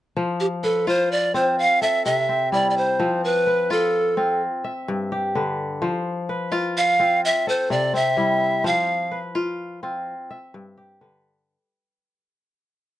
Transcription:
0.17 kora F3 C5
0.40 pan flute G4
0.63 pan flute A4, kora B4
0.87 kora F4, pan flute C5
1.12 pan flute D5
1.34 kora C4 F4, pan flute C5
1.59 pan flute F5
1.82 kora A4, pan flute E5
2.05 kora C3, pan flute E5
2.29 kora C4
2.52 kora G3 E4, pan flute D5
2.70 pan flute D5
2.77 pan flute C5
2.99 kora F3 C4
3.24 pan flute B4
3.47 kora B4
3.70 kora F4, pan flute A4
4.17 kora C4 F4
4.64 kora E5
4.88 kora G2
5.12 kora G4
5.35 kora D3 B4
5.82 kora F3 C5
6.29 kora B4
6.52 kora F4
6.77 pan flute F5
7.00 kora C4 F4
7.25 pan flute E5
7.47 kora A4, pan flute C5
7.70 kora C3, pan flute D5
7.94 kora C4, pan flute E5
8.17 kora G3 E4
8.64 kora F3 C5, pan flute F5
9.11 kora B4
9.35 kora F4
9.83 kora C4 F4
10.30 kora E5
10.54 kora G2
10.78 kora G4
11.01 kora D3 B4

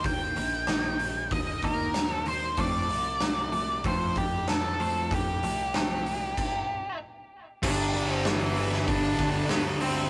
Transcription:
0.04 picked electric bass D#2, clean electric guitar D#3 A#3, lead electric guitar G5, kick, open hi-hat
0.36 picked electric bass A#1, clean electric guitar D#3 A#3, open hi-hat
0.67 clean electric guitar D#3 A#3 D#4, snare, open hi-hat
0.99 clean electric guitar D#3 A#3, open hi-hat
1.31 picked electric bass D#2, clean electric guitar D#3 A#3, lead electric guitar D#5, kick, open hi-hat
1.62 clean electric guitar D#3 A#3 D#4, lead electric guitar A#4, kick, open hi-hat
1.94 clean electric guitar D#3 A#3, snare, open hi-hat
2.11 lead electric guitar A4
2.26 clean electric guitar D#3 A#3, lead electric guitar C5, open hi-hat
2.57 picked electric bass F2, clean electric guitar F3 A3 C4, lead electric guitar D5, kick, open hi-hat
2.89 picked electric bass C2, clean electric guitar F3 A3, open hi-hat
3.20 clean electric guitar F3 A3, snare, open hi-hat
3.52 clean electric guitar F3 A3, open hi-hat
3.84 picked electric bass F2, clean electric guitar F3 A3 C4, lead electric guitar C5, kick, open hi-hat
4.16 clean electric guitar F3 A3, lead electric guitar G4, kick, open hi-hat
4.48 clean electric guitar F3 A3, lead electric guitar A4, snare, open hi-hat
4.80 clean electric guitar F3 A3 C4, open hi-hat
5.11 picked electric bass F2, clean electric guitar F3 A3, lead electric guitar G4, kick, open hi-hat
5.43 picked electric bass C2, clean electric guitar F3 A3, open hi-hat
5.74 clean electric guitar F3 A3 C4, snare, open hi-hat
6.06 clean electric guitar F3 A3, open hi-hat
6.37 kick, crash
7.62 picked electric bass G1, distorted electric guitar G2 D3 G3, lead electric guitar D4 D5, kick, crash
7.95 picked electric bass G1, distorted electric guitar G2 D3 G3, open hi-hat
8.12 lead electric guitar C4
8.25 distorted electric guitar G2 D3 G3, lead electric guitar E3 E4, snare, open hi-hat
8.56 distorted electric guitar G2 D3 G3, open hi-hat
8.72 snare
8.88 picked electric bass G1, distorted electric guitar G2 D3 G3, lead electric guitar D4 D5, kick, open hi-hat
9.18 picked electric bass D2, distorted electric guitar G2 D3 G3, kick, snare, open hi-hat
9.49 distorted electric guitar G2 D3 G3, lead electric guitar B3 B4, snare, open hi-hat
9.81 distorted electric guitar G2 D3 G3, lead electric guitar C4 C5, open hi-hat

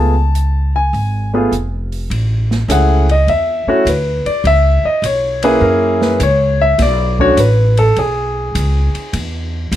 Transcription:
Already playing: upright bass C#2, grand piano A3 B3 F4 G#4 A5
0.35 closed hi-hat
0.76 grand piano G#5
0.93 upright bass G#1, open hi-hat
1.34 grand piano A3 B3 F4 G#4
1.52 upright bass F1, closed hi-hat
1.92 open hi-hat
2.10 upright bass A1, ride
2.51 snare
2.68 upright bass C#2, grand piano A3 C#4 E4 G#4 F#5, hi-hat pedal, ride
3.09 grand piano D#5, ride
3.27 upright bass E2, grand piano E5, ride
3.67 grand piano A3 C#4 E4 F#4 C#5, muted upright bass stroke
3.85 upright bass D2, grand piano B4, hi-hat pedal, ride
4.25 grand piano D5, muted upright bass stroke, ride
4.44 upright bass C#2, grand piano E5, ride
4.84 grand piano D#5, muted upright bass stroke
5.02 upright bass B1, grand piano C#5, hi-hat pedal, ride
5.43 grand piano A#3 C#4 E4 G#4 B4, ride
5.61 upright bass F#2, grand piano A#4
6.01 grand piano B4, snare
6.20 upright bass C#2, grand piano C#5, hi-hat pedal, ride
6.61 grand piano E5
6.78 upright bass B1, grand piano D5, snare, ride
7.19 grand piano A3 C#4 D4 F#4 C#5, kick
7.37 upright bass A1, grand piano B4, hi-hat pedal, ride
7.77 grand piano A4, ride
7.96 upright bass B1, grand piano G#4, ride
8.55 upright bass C#2, hi-hat pedal, ride
8.94 muted upright bass stroke, ride
9.13 upright bass E2, ride
9.72 upright bass F2, hi-hat pedal, ride

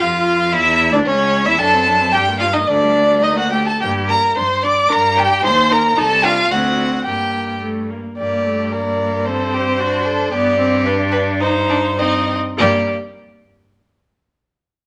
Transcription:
0.00 cello F2, viola F4, violin F4 F5
0.52 cello E2, violin E4 E5, viola E4
0.92 cello D2, violin D4 D5, viola D4
1.05 cello C#2, violin C#4 C#5, viola C#4
1.45 cello E2, violin E4 E5, viola E4
1.59 cello F#2, viola D4, violin A4 A5
1.74 viola C4
1.87 viola D4
2.01 viola C4
2.12 cello G2, viola G3, violin G4 G5
2.29 viola A#3
2.39 viola G3, violin F4 F5
2.53 viola A#3, violin D#4 D#5
2.66 cello D2, viola A3, violin D4 D5
2.83 viola G3
2.97 viola A3
3.11 viola G3
3.22 viola A#3, violin D#4 D#5
3.37 violin F#4 F#5
3.52 viola A3, violin G4 G5
3.66 violin A4 A5
3.80 cello G2, viola A#3, violin G4 G5
4.08 viola A#3, violin A#4 A#5
4.36 cello G2, viola D4, violin C5 C6
4.63 viola D4, violin D5 D6
4.89 cello G2, viola D4, violin A#4 A#5
5.17 viola D4, violin G4 G5
5.43 cello D#2, viola D#4, violin C5 C6
5.70 viola D#4, violin A#4 A#5
5.97 cello C2, viola D#4, violin A4 A5
6.24 viola D4, violin F4 F5
6.51 cello D2, viola C4, violin F#4 F#5
7.04 cello G2, viola A#3, violin G4 G5
7.61 viola A3
7.90 viola A#3
8.16 cello G2, viola A#3, violin G4 D5
8.45 viola A3
8.71 viola A#3, violin A#4 D5
9.26 viola C4, violin A4 C5
9.54 violin G4
9.79 viola D4, violin F#4
10.05 violin A4
10.32 cello G2, viola B3, violin G4 D5
10.59 viola C4
10.85 viola D4, violin B4
11.12 violin B4
11.40 viola D#4, violin D#4 C5
11.70 violin D4
11.98 violin C4 D#5, viola D#4
12.58 cello G2, viola A#3, violin G4 D5

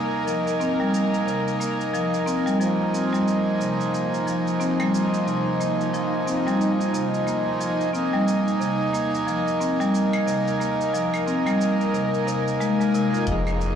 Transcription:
Already playing: marimba A#3, harmonium A#3 D#4 G#5, synth drone A#4
0.27 marimba F3, shaker
0.48 shaker
0.60 marimba C4, shaker
0.80 marimba G3
0.94 shaker
1.14 shaker
1.27 marimba C3, shaker
1.48 shaker
1.60 marimba A#3, shaker
1.81 shaker
1.93 marimba F3, shaker
2.14 shaker
2.26 marimba C4, shaker
2.46 marimba G3, shaker
2.58 harmonium F3 A#3 D#4, marimba F3, synth drone F3 D#4, shaker
2.62 harmonium G#5
2.93 marimba C4, shaker
3.13 marimba G3, shaker
3.28 shaker
3.60 marimba C3, shaker
3.81 shaker
3.93 marimba A#3, shaker
4.14 shaker
4.26 marimba F3, shaker
4.48 shaker
4.60 marimba C4, shaker
4.80 marimba G3, claves
4.94 shaker
5.14 shaker
5.27 marimba C3, shaker
5.60 marimba A#3, shaker
5.81 shaker
5.94 marimba F3, shaker
6.27 marimba C4, shaker
6.47 marimba G3, shaker
6.61 shaker
6.81 shaker
6.94 marimba C3, shaker
7.14 shaker
7.27 marimba A#3, shaker
7.60 marimba F3, shaker
7.81 shaker
7.92 harmonium A#3 D#4 G#5, marimba C4, synth drone A#4, shaker
8.13 marimba G3
8.28 shaker
8.48 shaker
8.60 marimba C3, shaker
8.93 marimba A#3, shaker
9.15 shaker
9.27 marimba F3, shaker
9.48 shaker
9.60 marimba C4, shaker
9.80 marimba G3, shaker
9.95 shaker
10.13 claves
10.27 marimba C3, shaker
10.48 shaker
10.60 marimba A#3, shaker
10.81 shaker
10.93 marimba F3, shaker
11.14 claves, shaker
11.27 marimba C4, shaker
11.46 marimba G3, claves, shaker
11.61 shaker
11.81 shaker
11.94 marimba C3, shaker
12.14 shaker
12.27 marimba C3, shaker
12.48 shaker
12.60 marimba G#3, shaker
12.80 marimba G#3, shaker
12.94 marimba C3, shaker
13.14 marimba F4, shaker
13.25 analog synth bass F1, synth drone D#3 F4, marimba F3, harmonium A#3 D#4 G#4, kick, closed hi-hat, shaker
13.47 claves, shaker
13.61 shaker

